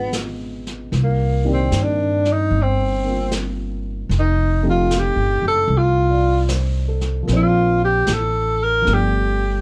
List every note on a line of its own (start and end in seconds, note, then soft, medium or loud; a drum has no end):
0.00 0.88 G#1 medium
0.00 0.93 B2 soft
0.00 0.90 F3 medium
0.00 0.92 G#3 soft
0.00 0.18 B3 medium
0.00 0.93 B3 soft
0.00 0.94 C#4 medium
0.00 0.94 F4 soft
0.00 0.95 G4 medium
0.13 snare soft
0.13 hi-hat pedal medium
0.67 snare soft
0.92 1.68 C2 medium
0.92 brush sweep soft
0.92 snare soft
1.04 1.48 A#3 medium
1.45 4.11 D#3 medium
1.45 3.03 A#3 medium
1.45 3.05 C4 soft
1.45 4.12 G4 medium
1.45 4.12 D5 medium
1.53 1.84 C4 medium
1.71 2.48 G2 medium
1.71 snare soft
1.71 hi-hat pedal medium
1.83 2.33 D4 medium
2.25 snare soft
2.32 2.64 D#4 medium
2.51 4.06 G1 medium
2.51 brush sweep soft
2.62 3.37 C4 medium
3.04 4.11 A#3 soft
3.04 4.12 C4 soft
3.08 4.13 F4 soft
3.31 snare soft
3.31 hi-hat pedal medium
4.09 5.12 F1 medium
4.09 brush sweep soft
4.09 snare soft
4.19 4.65 D#4 medium
4.63 7.21 F3 medium
4.63 7.28 A3 medium
4.63 7.26 C4 medium
4.63 7.28 D#4 soft
4.63 7.28 G4 medium
4.70 5.00 F4 medium
4.91 snare soft
4.91 hi-hat pedal medium
4.99 5.47 G4 medium
5.16 5.41 G1 medium
5.42 5.67 F#1 medium
5.48 5.79 A4 loud
5.68 7.23 C2 medium
5.68 brush sweep soft
5.78 6.53 F4 medium
6.10 6.65 D5 soft
6.49 7.11 C5 soft
6.49 snare medium
6.49 hi-hat pedal medium
6.88 7.44 A4 soft
7.01 snare soft
7.23 8.80 F3 medium
7.23 8.85 A#3 soft
7.28 8.03 A#1 medium
7.28 8.86 C4 soft
7.28 8.88 D4 soft
7.28 brush sweep soft
7.28 snare soft
7.33 7.81 F4 medium
7.33 8.89 C5 medium
7.85 8.15 G4 medium
8.07 8.83 A1 medium
8.07 snare medium
8.07 hi-hat pedal medium
8.13 8.65 A4 medium
8.63 8.96 A#4 loud
8.82 9.61 F3 medium
8.82 9.61 A3 medium
8.87 9.61 G1 medium
8.87 9.61 B3 medium
8.87 9.61 D4 soft
8.87 brush sweep soft
8.87 snare soft
8.93 9.61 G4 medium